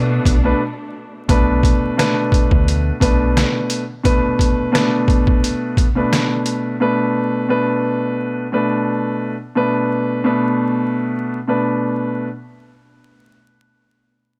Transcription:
0.00 0.18 B2 loud
0.00 0.33 B2 loud
0.00 1.26 B2 medium
0.00 0.33 A3 medium
0.00 1.26 A3 medium
0.00 0.34 D4 medium
0.00 1.26 D4 medium
0.00 0.34 B4 loud
0.25 0.52 B1 medium
0.25 kick loud
0.25 closed hi-hat medium
0.44 0.60 B2 medium
0.44 0.60 A3 medium
0.44 0.60 D4 medium
0.44 0.60 B4 loud
1.29 1.71 B1 loud
1.29 1.93 B2 medium
1.29 1.93 A3 medium
1.29 1.93 D4 medium
1.29 1.94 B4 loud
1.29 kick loud
1.29 closed hi-hat medium
1.63 kick medium
1.63 closed hi-hat medium
1.97 2.93 B2 medium
1.97 2.94 A3 medium
1.97 2.94 D4 medium
1.97 2.94 B4 loud
1.97 cross-stick medium
1.97 snare loud
1.97 closed hi-hat medium
2.32 kick loud
2.32 closed hi-hat medium
2.51 2.90 D2 medium
2.51 kick loud
2.68 closed hi-hat medium
3.00 3.43 B1 medium
3.00 3.81 B2 medium
3.00 3.81 A3 medium
3.00 3.82 D4 medium
3.00 3.82 B4 loud
3.00 kick medium
3.00 closed hi-hat medium
3.37 cross-stick medium
3.37 snare loud
3.37 closed hi-hat medium
3.70 closed hi-hat medium
4.03 4.68 B2 medium
4.03 4.68 A3 medium
4.03 4.69 D4 medium
4.03 4.69 B4 loud
4.03 kick loud
4.03 closed hi-hat medium
4.39 kick medium
4.39 closed hi-hat medium
4.72 5.85 B2 loud
4.72 5.85 A3 medium
4.72 5.85 D4 medium
4.72 5.86 B4 loud
4.72 cross-stick medium
4.72 snare loud
4.72 closed hi-hat medium
5.08 kick loud
5.08 closed hi-hat medium
5.27 kick loud
5.44 closed hi-hat medium
5.77 kick medium
5.77 closed hi-hat medium
5.95 6.74 B2 medium
5.95 6.74 A3 medium
5.95 6.75 D4 medium
5.95 6.75 B4 medium
6.13 cross-stick medium
6.13 snare loud
6.13 closed hi-hat medium
6.46 closed hi-hat medium
6.80 7.44 B2 medium
6.80 7.45 A3 medium
6.80 7.45 D4 medium
6.80 7.45 B4 loud
7.49 8.45 B2 medium
7.49 8.45 A3 medium
7.49 8.46 D4 medium
7.49 8.46 B4 loud
8.52 9.33 B2 medium
8.52 9.33 A3 medium
8.52 9.34 D4 medium
8.52 9.34 B4 loud
9.56 10.20 B2 loud
9.56 10.20 A3 medium
9.56 10.21 D4 medium
9.56 10.21 B4 loud
10.24 11.37 B2 loud
10.24 11.37 A3 medium
10.24 11.37 D4 medium
10.24 11.37 B4 loud
11.48 12.26 B2 medium
11.48 12.26 A3 medium
11.48 12.27 D4 medium
11.48 12.27 B4 medium

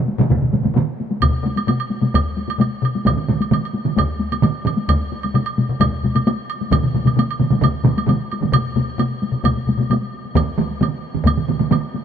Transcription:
0.08 taiko high medium
0.18 taiko low-mid loud
0.18 taiko mid loud
0.18 taiko high medium
0.29 taiko medium
0.29 taiko low-mid medium
0.29 taiko mid medium
0.29 taiko high medium
0.41 taiko low-mid medium
0.41 taiko mid medium
0.52 taiko low-mid medium
0.52 taiko mid medium
0.52 taiko high medium
0.63 taiko low-mid medium
0.63 taiko mid medium
0.63 taiko high medium
0.74 taiko low-mid medium
0.74 taiko mid medium
0.74 taiko high medium
1.00 taiko high soft
1.11 taiko high soft
1.20 taiko loud
1.20 taiko low-mid medium
1.20 taiko high medium
1.20 high woodblock medium
1.31 taiko low-mid medium
1.43 taiko low-mid loud
1.43 taiko high medium
1.56 taiko high medium
1.56 high woodblock soft
1.67 taiko low-mid loud
1.67 taiko high medium
1.67 high woodblock soft
1.80 high woodblock soft
1.90 taiko high medium
2.01 taiko low-mid medium
2.01 taiko high medium
2.14 taiko loud
2.14 taiko high medium
2.14 high woodblock medium
2.37 taiko high soft
2.48 taiko high medium
2.48 high woodblock soft
2.58 taiko low-mid loud
2.58 taiko high medium
2.58 high woodblock soft
2.82 taiko low-mid medium
2.82 high woodblock soft
2.95 taiko high medium
3.06 taiko loud
3.06 taiko mid medium
3.06 taiko high medium
3.06 high woodblock medium
3.17 taiko mid medium
3.28 taiko mid medium
3.28 taiko high medium
3.40 taiko high soft
3.40 high woodblock soft
3.51 taiko mid medium
3.51 taiko high medium
3.51 high woodblock soft
3.65 high woodblock soft
3.74 taiko high soft
3.85 taiko mid medium
3.85 taiko high medium
3.96 taiko loud
3.96 taiko high medium
3.96 high woodblock medium
4.20 taiko high medium
4.32 taiko high medium
4.32 high woodblock soft
4.42 taiko mid loud
4.42 taiko high medium
4.42 high woodblock soft
4.65 taiko mid loud
4.65 high woodblock soft
4.77 taiko high medium
4.88 taiko loud
4.88 taiko high medium
4.88 high woodblock medium
5.12 taiko high medium
5.23 taiko high soft
5.23 high woodblock soft
5.34 taiko low-mid loud
5.34 taiko high medium
5.34 high woodblock soft
5.46 high woodblock soft
5.58 taiko low-mid medium
5.58 taiko high medium
5.69 taiko low-mid medium
5.80 taiko loud
5.80 taiko low-mid medium
5.80 taiko high medium
5.80 high woodblock medium
5.92 taiko low-mid medium
6.03 taiko low-mid medium
6.03 taiko high medium
6.15 taiko low-mid medium
6.15 taiko high medium
6.15 high woodblock soft
6.27 taiko high medium
6.27 high woodblock soft
6.50 high woodblock soft
6.61 taiko high medium
6.71 taiko loud
6.71 taiko low-mid medium
6.71 taiko mid medium
6.71 taiko high medium
6.71 high woodblock medium
6.83 taiko low-mid medium
6.83 taiko mid medium
6.94 taiko low-mid medium
6.94 taiko mid medium
6.94 taiko high medium
7.05 taiko low-mid medium
7.05 taiko mid medium
7.05 taiko high medium
7.05 high woodblock soft
7.16 taiko low-mid medium
7.16 taiko mid medium
7.16 taiko high medium
7.16 high woodblock soft
7.31 high woodblock soft
7.39 taiko low-mid medium
7.39 taiko mid medium
7.39 taiko high medium
7.50 taiko low-mid medium
7.50 taiko mid medium
7.50 taiko high medium
7.61 taiko loud
7.61 taiko low-mid loud
7.61 taiko mid loud
7.61 taiko high medium
7.61 high woodblock medium
7.84 taiko low-mid medium
7.84 taiko mid loud
7.84 taiko high medium
7.98 taiko high medium
7.98 high woodblock soft
8.06 taiko low-mid loud
8.06 taiko mid medium
8.06 taiko high medium
8.06 high woodblock soft
8.32 taiko high soft
8.32 high woodblock soft
8.41 taiko low-mid medium
8.41 taiko mid medium
8.41 taiko high soft
8.53 taiko loud
8.53 taiko low-mid loud
8.53 taiko high medium
8.53 high woodblock medium
8.76 taiko low-mid loud
8.76 taiko high medium
8.89 taiko high soft
8.98 taiko low-mid loud
8.98 taiko high medium
8.98 high woodblock soft
9.11 taiko high soft
9.23 taiko high medium
9.32 taiko low-mid medium
9.32 taiko high soft
9.44 taiko loud
9.44 taiko low-mid medium
9.44 taiko high medium
9.44 high woodblock medium
9.55 taiko low-mid medium
9.55 taiko high soft
9.67 taiko low-mid medium
9.67 taiko high medium
9.78 taiko low-mid medium
9.78 taiko high medium
9.90 taiko low-mid medium
9.90 taiko high medium
9.90 high woodblock soft
10.02 taiko high soft
10.25 taiko high soft
10.35 taiko loud
10.35 taiko mid loud
10.35 taiko high medium
10.35 high woodblock medium
10.47 taiko high soft
10.58 taiko mid loud
10.58 taiko high medium
10.71 taiko high soft
10.81 taiko mid loud
10.81 taiko high medium
10.81 high woodblock soft
10.93 taiko high soft
11.15 taiko mid medium
11.15 taiko high soft
11.25 taiko loud
11.25 taiko mid medium
11.25 taiko high medium
11.25 high woodblock medium
11.37 taiko mid medium
11.37 taiko high soft
11.49 taiko mid medium
11.49 taiko high medium
11.60 taiko mid medium
11.60 taiko high medium
11.71 taiko mid loud
11.71 taiko high medium
11.71 high woodblock soft
11.83 taiko high soft
11.94 taiko high medium

